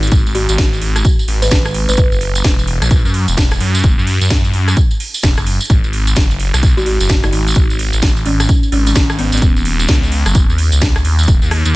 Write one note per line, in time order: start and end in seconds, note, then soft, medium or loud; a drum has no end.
0.00 0.10 G#1 loud
0.00 closed hi-hat medium
0.00 tambourine medium
0.07 closed hi-hat medium
0.12 0.24 G#1 loud
0.12 kick loud
0.12 closed hi-hat medium
0.12 tambourine medium
0.26 0.47 G#1 loud
0.26 tambourine soft
0.35 0.44 F#4 medium
0.35 open hi-hat loud
0.49 0.80 G#1 medium
0.49 0.55 F#4 medium
0.49 closed hi-hat soft
0.49 tambourine medium
0.58 kick loud
0.58 snare loud
0.58 closed hi-hat medium
0.58 tambourine medium
0.73 tambourine soft
0.81 1.03 G#1 loud
0.81 open hi-hat loud
0.96 cross-stick medium
0.96 closed hi-hat soft
0.96 tambourine medium
1.05 kick loud
1.05 closed hi-hat medium
1.05 tambourine medium
1.19 tambourine soft
1.28 1.50 G#1 medium
1.28 open hi-hat loud
1.42 1.60 B4 medium
1.42 open hi-hat medium
1.42 tambourine medium
1.51 1.86 G#1 loud
1.51 kick loud
1.51 snare loud
1.51 closed hi-hat medium
1.51 tambourine medium
1.65 cross-stick medium
1.65 tambourine soft
1.74 open hi-hat loud
1.89 1.96 G#1 medium
1.89 1.95 B4 medium
1.89 closed hi-hat soft
1.89 tambourine medium
1.93 closed hi-hat medium
1.93 tambourine medium
1.98 2.10 F#1 loud
1.98 2.07 B4 medium
1.98 kick loud
1.98 closed hi-hat medium
2.12 2.43 F#1 loud
2.12 tambourine soft
2.21 open hi-hat loud
2.35 closed hi-hat soft
2.35 tambourine medium
2.44 2.80 E1 loud
2.44 kick loud
2.44 snare loud
2.44 closed hi-hat medium
2.44 tambourine medium
2.59 tambourine soft
2.68 open hi-hat loud
2.82 3.03 A#1 medium
2.82 cross-stick medium
2.82 closed hi-hat soft
2.82 tambourine medium
2.91 kick loud
2.91 closed hi-hat medium
2.91 tambourine medium
3.05 3.26 F#2 medium
3.05 tambourine soft
3.14 open hi-hat loud
3.28 3.59 E1 medium
3.28 closed hi-hat soft
3.28 tambourine medium
3.37 kick loud
3.37 snare loud
3.37 closed hi-hat medium
3.37 tambourine medium
3.51 cross-stick medium
3.51 tambourine soft
3.60 3.82 F#2 loud
3.60 open hi-hat loud
3.75 closed hi-hat soft
3.75 tambourine medium
3.79 closed hi-hat medium
3.84 3.96 F#1 medium
3.84 kick loud
3.84 closed hi-hat medium
3.84 tambourine medium
3.98 4.19 F#2 loud
3.98 tambourine soft
4.07 open hi-hat loud
4.21 4.52 F#2 loud
4.21 closed hi-hat soft
4.21 tambourine medium
4.30 kick loud
4.30 snare loud
4.30 closed hi-hat medium
4.30 tambourine medium
4.45 tambourine soft
4.54 4.75 F#2 loud
4.54 open hi-hat loud
4.68 cross-stick medium
4.68 closed hi-hat soft
4.68 tambourine medium
4.77 kick loud
4.77 closed hi-hat medium
4.77 tambourine medium
4.91 tambourine soft
5.00 open hi-hat loud
5.14 open hi-hat medium
5.14 tambourine medium
5.23 5.35 E1 loud
5.23 kick loud
5.23 snare loud
5.23 closed hi-hat medium
5.23 tambourine medium
5.37 5.59 F#1 medium
5.37 cross-stick medium
5.37 tambourine soft
5.47 open hi-hat loud
5.61 closed hi-hat soft
5.61 tambourine medium
5.65 closed hi-hat medium
5.70 5.82 G#1 medium
5.70 kick loud
5.70 closed hi-hat medium
5.70 tambourine medium
5.84 6.15 G#1 medium
5.84 tambourine soft
5.93 open hi-hat loud
6.07 closed hi-hat soft
6.07 tambourine medium
6.16 6.52 F#1 loud
6.16 kick loud
6.16 snare loud
6.16 closed hi-hat medium
6.16 tambourine medium
6.31 tambourine soft
6.40 open hi-hat loud
6.54 6.75 B1 medium
6.54 cross-stick medium
6.54 closed hi-hat soft
6.54 tambourine medium
6.63 kick loud
6.63 closed hi-hat medium
6.63 tambourine medium
6.77 6.98 G#1 medium
6.77 6.83 F#4 medium
6.77 tambourine soft
6.86 6.95 F#4 medium
6.86 open hi-hat loud
7.00 7.31 F#1 medium
7.00 closed hi-hat soft
7.00 tambourine medium
7.09 kick loud
7.09 snare loud
7.09 closed hi-hat medium
7.09 tambourine medium
7.23 7.29 D#4 medium
7.23 cross-stick medium
7.23 tambourine soft
7.33 7.54 G#1 medium
7.33 7.42 D#4 medium
7.33 open hi-hat loud
7.47 closed hi-hat soft
7.47 tambourine medium
7.51 closed hi-hat medium
7.56 7.68 G#1 medium
7.56 kick loud
7.56 closed hi-hat medium
7.70 7.91 G#1 loud
7.70 tambourine soft
7.79 open hi-hat loud
7.93 8.24 G#1 medium
7.93 closed hi-hat medium
7.93 tambourine medium
8.02 kick loud
8.02 snare loud
8.02 closed hi-hat medium
8.02 tambourine medium
8.17 tambourine soft
8.26 8.47 G#1 medium
8.26 8.70 C#4 medium
8.26 open hi-hat loud
8.40 cross-stick medium
8.40 closed hi-hat soft
8.40 tambourine medium
8.49 kick loud
8.49 closed hi-hat medium
8.49 tambourine medium
8.63 tambourine soft
8.72 8.94 G#1 medium
8.72 8.81 C#4 medium
8.72 open hi-hat loud
8.86 8.92 C#4 medium
8.86 open hi-hat medium
8.86 tambourine medium
8.95 9.31 G#1 loud
8.95 kick loud
8.95 snare loud
8.95 closed hi-hat medium
8.95 tambourine medium
9.10 cross-stick medium
9.10 tambourine soft
9.19 9.28 B3 medium
9.19 open hi-hat loud
9.32 9.41 G#1 medium
9.32 9.39 B3 medium
9.32 closed hi-hat soft
9.32 tambourine medium
9.38 closed hi-hat medium
9.42 9.54 D#1 medium
9.42 kick loud
9.42 closed hi-hat medium
9.42 tambourine medium
9.56 9.87 D#1 medium
9.56 tambourine soft
9.65 open hi-hat loud
9.80 closed hi-hat medium
9.80 tambourine medium
9.88 10.24 C#2 loud
9.88 kick loud
9.88 snare loud
9.88 closed hi-hat medium
9.88 tambourine medium
10.03 tambourine soft
10.12 open hi-hat loud
10.26 10.47 F#1 loud
10.26 cross-stick medium
10.26 closed hi-hat medium
10.26 tambourine medium
10.35 kick loud
10.35 closed hi-hat medium
10.35 tambourine medium
10.49 10.70 D#2 loud
10.49 tambourine soft
10.58 open hi-hat loud
10.72 11.03 C#2 loud
10.72 closed hi-hat medium
10.72 tambourine medium
10.81 kick loud
10.81 snare loud
10.81 closed hi-hat medium
10.96 cross-stick medium
10.96 tambourine soft
11.05 11.27 D#2 loud
11.05 open hi-hat loud
11.19 closed hi-hat soft
11.19 tambourine medium
11.23 closed hi-hat medium
11.28 11.40 D#1 medium
11.28 kick loud
11.28 closed hi-hat medium
11.28 tambourine medium
11.42 11.63 D#2 medium
11.42 tambourine soft
11.51 cross-stick medium
11.51 open hi-hat loud
11.65 11.76 D#2 medium
11.65 closed hi-hat medium
11.65 tambourine medium